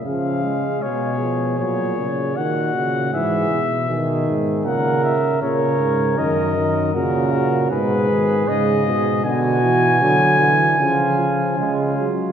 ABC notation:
X:1
M:4/4
L:1/8
Q:1/4=78
K:G#phr
V:1 name="Trumpet"
^e2 c2 c2 f2 | e3 z f e c2 | d2 ^A2 B2 d2 | [K:Bdor] g6- g z |]
V:2 name="Flugelhorn"
G6 F2 | G z G2 ^A2 A2 | ^A2 F F G4 | [K:Bdor] F3 z ^E2 E2 |]
V:3 name="Trombone" clef=bass
^E, G, G, E, F, C, D, C, | E, z D,2 C,2 C,2 | D, D, C,2 B,, D, C, B,, | [K:Bdor] D, E, F, E, ^E, E, G, F, |]
V:4 name="Bass trombone" clef=bass
C,2 B,,2 ^A,,2 A,,2 | G,, B,, B,, G,, ^A,, z A,, G,, | F,,2 ^A,,2 G,,2 G,,2 | [K:Bdor] B,,2 D,2 C,2 C, z |]